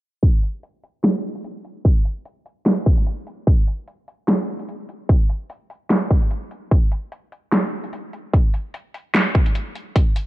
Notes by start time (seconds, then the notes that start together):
0.23 kick, closed hi-hat
0.43 closed hi-hat
0.63 closed hi-hat
0.83 closed hi-hat
1.04 snare, closed hi-hat
1.35 closed hi-hat
1.44 closed hi-hat
1.65 closed hi-hat
1.85 kick, closed hi-hat
2.05 closed hi-hat
2.25 closed hi-hat
2.46 closed hi-hat
2.66 snare, closed hi-hat
2.86 kick
2.97 closed hi-hat
3.07 closed hi-hat
3.27 closed hi-hat
3.47 kick, closed hi-hat
3.67 closed hi-hat
3.88 closed hi-hat
4.08 closed hi-hat
4.28 snare, closed hi-hat
4.59 closed hi-hat
4.69 closed hi-hat
4.89 closed hi-hat
5.09 kick, closed hi-hat
5.29 closed hi-hat
5.50 closed hi-hat
5.70 closed hi-hat
5.90 snare, closed hi-hat
6.11 kick
6.22 closed hi-hat
6.31 closed hi-hat
6.51 closed hi-hat
6.71 kick, closed hi-hat
6.92 closed hi-hat
7.12 closed hi-hat
7.32 closed hi-hat
7.52 snare, closed hi-hat
7.84 closed hi-hat
7.93 closed hi-hat
8.13 closed hi-hat
8.34 kick, closed hi-hat
8.54 closed hi-hat
8.74 closed hi-hat
8.94 closed hi-hat
9.15 snare, closed hi-hat
9.35 kick
9.46 closed hi-hat
9.55 closed hi-hat
9.75 closed hi-hat
9.96 kick, closed hi-hat
10.16 closed hi-hat